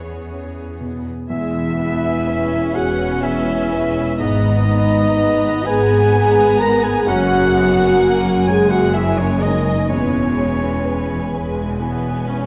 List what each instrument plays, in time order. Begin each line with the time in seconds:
Already playing: cello section E2, grand piano E2 C#4 G#4 B4, viola section B3 G#4, violin section C#5
0.31 grand piano C#4
0.80 grand piano B2
1.29 double bass section E1, cello section E2, grand piano E2, viola section G#3, french horn section E4, flute E5, oboe E5, violin section E5
1.79 grand piano B3, viola section B3, violin section B4 G#5
2.27 viola section C#4, grand piano B4
2.73 double bass section E1, cello section E2, french horn section F#4, grand piano G#4, flute F#5, oboe F#5, violin section F#5
3.22 french horn section E4, violin section B4 E5 G#5, flute E5, oboe E5, grand piano G#5
3.72 grand piano B4
4.18 double bass section G#1, grand piano G#2, cello section G#2, viola section B3, french horn section D#4, violin section B4 D#5 A#5, flute D#5, oboe D#5
4.68 viola section B3, grand piano B3, violin section B4 A#5
5.17 viola section B3, grand piano B4
5.65 double bass section G#1, cello section G#2, french horn section G#4, grand piano B4, flute G#5, oboe G#5, violin section G#5
6.13 violin section B4 A#5, grand piano G#5
6.58 french horn section A#4, grand piano B4, violin section A#5, flute A#5, oboe A#5
6.82 french horn section G#4, violin section G#5, flute G#5, oboe G#5
7.06 double bass section F#1, cello section F#2, grand piano F#2, viola section C#4, french horn section F#4, violin section F#5, flute F#5, oboe F#5
7.53 viola section B3, grand piano C#4, violin section A#4 G#5
8.00 viola section A#3, grand piano A#4
8.46 double bass section F#1, cello section F#2, viola section G#3, grand piano C#5, flute G#5, violin section G#5, oboe G#5
8.50 french horn section G#4
8.71 french horn section F#4, violin section F#5, oboe F#5, flute F#5
8.93 french horn section E4, violin section A#4 E5 G#5, flute E5, oboe E5, grand piano G#5
9.17 french horn section C#4, violin section C#5, flute C#5, oboe C#5
9.40 french horn section D#4, grand piano C#5, flute D#5, violin section D#5, oboe D#5
9.88 double bass section E1, cello section E2, grand piano E2, viola section G#3, french horn section C#4, violin section B4 C#5 G#5, oboe C#5, flute C#5
10.38 grand piano C#4, violin section B4 G#5
10.85 grand piano B4
11.33 double bass section E1, cello section E2, viola section G#3, grand piano C#5
11.80 viola section B3, violin section B4 G#5, grand piano G#5
12.29 viola section C#4, grand piano C#5